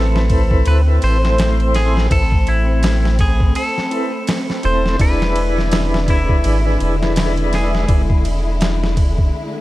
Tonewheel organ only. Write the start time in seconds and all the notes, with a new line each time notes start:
Already playing: C4 E4 A4 B4
0.87 C4 E4 A4 B4
1.22 A3 C4 E4 C5
2.10 C4 E4 A4 B4
3.91 C4 E4 A4 B4
4.63 C4 E4 A4 C5
4.99 D4 E4 G#4 B4
6.65 D4 E4 G#4 B4
7.00 D4 E4 G#4 B4
7.88 D4 E4 G#4 B4